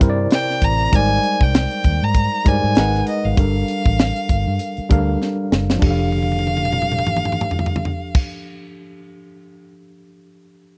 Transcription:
0.00 0.26 G2 medium
0.00 0.94 C3 medium
0.00 0.94 C4 medium
0.00 0.94 E4 medium
0.00 0.02 A#4 medium
0.00 0.76 A#4 medium
0.00 0.94 C5 medium
0.00 0.10 D5 medium
0.00 kick loud
0.00 closed hi-hat medium
0.10 0.80 D5 loud
0.31 0.66 G5 loud
0.31 snare loud
0.31 closed hi-hat medium
0.50 snare soft
0.62 0.87 A1 medium
0.62 0.96 A#5 loud
0.62 kick medium
0.62 closed hi-hat medium
0.92 1.18 G#1 loud
0.92 1.91 G3 medium
0.92 1.90 G#3 medium
0.92 1.90 D#4 medium
0.92 1.91 A#4 medium
0.92 1.92 C5 medium
0.92 1.92 D5 medium
0.92 1.45 G#5 loud
0.92 kick loud
0.92 closed hi-hat loud
1.24 closed hi-hat medium
1.41 1.66 C2 medium
1.41 2.05 G5 loud
1.41 kick medium
1.54 snare loud
1.54 closed hi-hat medium
1.71 closed hi-hat medium
1.84 1.99 D#2 medium
1.84 kick medium
1.84 closed hi-hat medium
2.03 2.27 G#2 medium
2.03 2.49 A#5 loud
2.15 kick medium
2.15 closed hi-hat medium
2.45 2.60 G2 medium
2.45 2.77 G3 medium
2.45 2.74 G#3 medium
2.45 2.75 D#4 medium
2.45 2.76 A#4 medium
2.45 2.77 C5 medium
2.45 2.78 D5 medium
2.45 3.08 G#5 loud
2.45 kick medium
2.45 closed hi-hat medium
2.64 2.74 G#2 loud
2.75 3.01 G#1 loud
2.75 3.27 G#3 medium
2.75 3.27 D#4 medium
2.75 3.28 A#4 medium
2.75 3.28 B4 medium
2.75 snare loud
2.75 closed hi-hat medium
2.79 3.29 F#5 medium
2.95 snare soft
3.07 3.27 D#5 medium
3.07 closed hi-hat medium
3.25 3.35 G#1 medium
3.25 5.22 F5 medium
3.37 3.62 G1 medium
3.37 4.35 G3 medium
3.37 4.35 D4 medium
3.37 4.36 A4 medium
3.37 4.36 A#4 medium
3.37 4.37 F5 medium
3.37 kick loud
3.37 closed hi-hat loud
3.68 closed hi-hat medium
3.86 4.10 A1 medium
3.86 kick medium
3.99 snare loud
3.99 closed hi-hat medium
4.16 closed hi-hat medium
4.29 4.44 G1 medium
4.29 kick medium
4.29 closed hi-hat medium
4.47 4.58 G2 medium
4.59 closed hi-hat medium
4.77 muted fingered electric bass stroke soft
4.77 closed hi-hat soft
4.89 5.15 D2 medium
4.89 5.65 G3 medium
4.89 5.65 D4 medium
4.89 5.65 A4 medium
4.89 5.66 A#4 medium
4.89 5.66 F5 medium
4.89 kick loud
4.89 closed hi-hat medium
5.22 snare soft
5.52 5.77 F#1 medium
5.52 snare medium
5.70 snare medium
5.75 8.17 F3 medium
5.79 8.21 F1 medium
5.79 8.19 D4 medium
5.79 8.21 G4 medium
5.79 kick loud
5.79 crash medium
5.83 8.23 A4 medium
5.83 8.21 F5 medium
5.91 8.25 F5 medium
6.12 high tom soft
6.23 high tom soft
6.32 high tom soft
6.39 high tom medium
6.47 high tom medium
6.57 high tom medium
6.65 mid tom medium
6.73 mid tom medium
6.82 mid tom medium
6.92 mid tom medium
6.99 mid tom medium
7.07 mid tom medium
7.16 mid tom medium
7.25 mid tom medium
7.32 mid tom medium
7.41 mid tom medium
7.51 floor tom medium
7.59 floor tom medium
7.66 floor tom medium
7.76 floor tom medium
7.85 floor tom medium
8.15 kick loud
8.15 crash medium

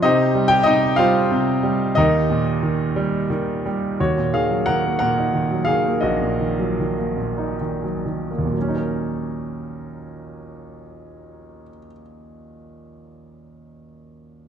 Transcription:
0.02 0.65 C3 medium
0.02 0.48 D#4 medium
0.02 0.48 G4 medium
0.02 0.48 C5 medium
0.02 0.47 D#5 medium
0.35 0.96 G3 soft
0.48 0.66 G4 medium
0.48 0.66 G5 loud
0.63 1.30 C3 medium
0.63 0.96 D#4 medium
0.63 0.95 D#5 medium
0.96 1.62 G3 medium
0.96 1.93 F4 medium
0.96 1.93 C5 medium
0.96 1.99 F5 loud
1.31 1.95 C3 medium
1.63 1.96 G3 medium
1.95 3.95 D#2 medium
1.95 3.28 D#4 medium
1.95 3.28 G4 medium
1.95 3.28 A#4 medium
1.95 3.26 D#5 medium
2.30 3.61 A#2 medium
2.63 3.29 D#3 soft
2.96 3.64 G3 medium
3.30 3.96 D#3 medium
3.66 3.98 G3 soft
4.00 5.98 D#2 soft
4.00 4.31 F#4 soft
4.00 4.34 C#5 medium
4.18 4.99 A#2 soft
4.33 4.67 D#3 soft
4.33 4.64 G#4 soft
4.33 4.67 F5 medium
4.51 5.50 F#3 soft
4.66 5.32 D#3 soft
4.66 4.97 A#4 medium
4.66 4.97 F#5 medium
4.85 5.83 A#3 soft
4.99 6.20 A#2 soft
4.99 5.63 A#4 medium
4.99 5.68 F#5 medium
5.18 6.55 D#4 soft
5.33 5.67 D#3 soft
5.51 6.58 F#3 soft
5.65 6.39 D#3 soft
5.65 5.99 G#4 medium
5.65 5.98 F5 medium
5.85 6.97 A#3 soft
6.01 8.52 A#1 medium
6.01 7.55 F#4 soft
6.01 7.54 D#5 medium
6.22 7.16 A#2 soft
6.40 6.78 D#3 soft
6.59 7.82 F#3 soft
6.79 7.59 D#3 soft
6.98 8.29 A#3 soft
7.17 8.44 A#2 soft
7.38 8.53 D#4 soft
7.61 8.04 D#3 soft
7.83 8.52 F#3 soft
8.06 8.55 D#3 soft
8.31 8.55 A#3 soft
8.38 11.62 D#2 soft
8.45 11.69 A#2 soft
8.53 11.77 F#3 soft
8.61 11.85 C#4 soft
8.68 11.92 D#4 soft
8.76 12.00 A#4 soft

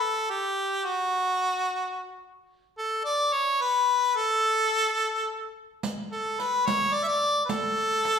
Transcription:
0.02 0.31 A4 medium
0.30 0.87 G4 medium
0.86 2.23 F#4 medium
2.78 3.03 A4 medium
3.04 3.35 D5 medium
3.33 3.63 C#5 medium
3.62 4.18 B4 medium
4.17 5.56 A4 medium
5.83 riq medium
6.12 6.41 A4 medium
6.12 riq soft
6.40 6.68 B4 medium
6.40 riq soft
6.66 6.95 C#5 loud
6.66 riq medium
6.81 riq soft
6.94 7.05 D5 medium
7.04 7.10 E5 medium
7.08 7.45 D5 medium
7.23 riq soft
7.45 7.52 B4 medium
7.49 8.19 A4 medium
7.49 riq medium
7.77 riq soft
8.05 riq soft

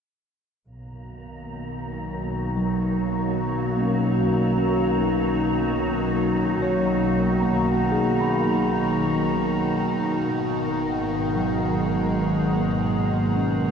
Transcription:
0.65 10.22 B1 medium
0.65 13.71 B2 medium
0.65 13.71 A#3 medium
0.65 13.71 F#4 medium
0.65 13.71 A#5 medium
0.79 13.71 D#3 medium
0.79 13.71 D#4 medium
1.10 10.27 F#3 medium
1.58 12.19 F#4 medium
2.57 3.93 F#3 soft
3.77 4.73 A#3 soft
3.77 4.57 C#4 soft
4.58 6.62 C#4 soft
6.62 7.58 C#5 soft
6.71 8.07 F#4 medium
7.40 9.47 A#3 soft
7.40 8.36 A#5 soft
7.92 9.96 G#4 medium
8.21 10.25 B5 soft
10.26 13.71 G#1 medium
10.60 13.71 G#4 medium
10.76 13.71 G#3 medium
11.36 12.72 F#3 soft
12.56 13.52 A#3 soft
13.36 13.71 C#4 soft

